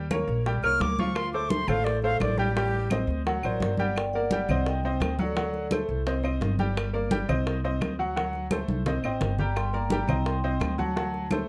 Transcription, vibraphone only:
3.45 A#4 D5
3.80 D5 F#5
3.96 D5 G5
4.13 D5 F#5
4.50 D5 F#5
4.67 D#5 G5
5.21 A4 D5
9.03 D#5 G5
9.41 G5 A#5
9.56 G5 C6
9.74 G5 A#5
10.09 A#5
10.26 G5 C6
10.78 F#5 A5

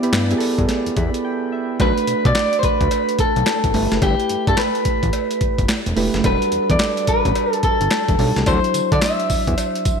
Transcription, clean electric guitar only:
1.82 B4
2.26 D5
2.59 C5
2.65 B4
3.20 A4
4.03 G4
4.48 A4
4.59 B4
6.26 B4
6.71 D5
7.09 B4
7.53 A4
7.64 A4
8.48 C5
8.93 D5
9.03 E5

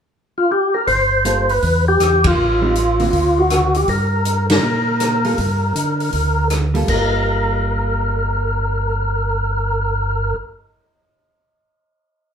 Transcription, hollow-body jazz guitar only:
1.25 G3 A#3 F4 A4
2.62 G3 C4 D#4
3.00 D3 A#3 C4 F#4
5.25 G3 A#3 F4 A4
6.74 G3 A#3 F4 A4
6.85 G3
6.90 A#3 F4

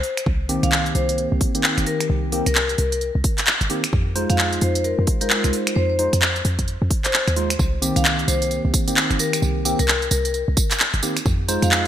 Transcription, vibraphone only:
Already playing: C5
0.63 F5
0.95 C5
1.09 C5
1.86 A#4
2.46 A#4
2.55 A#4
2.78 A#4
2.92 A#4
4.29 F5
4.62 C5
4.76 C5
4.84 A#4
5.21 A#4
5.76 C5
5.90 C5
7.04 C5
7.96 F5
8.28 C5
8.42 C5
9.20 A#4
9.79 A#4
9.88 A#4
10.11 A#4
10.25 A#4
11.63 F5

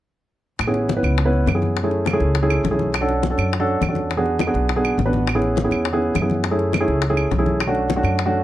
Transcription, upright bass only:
0.59 A1
1.03 C#2
1.46 F#2
2.20 C#2
2.64 B1
3.38 F#2
3.81 E2
4.54 B1
4.98 A1
5.71 E2
6.15 F#2
6.88 C#2
7.31 B1
8.03 F#2

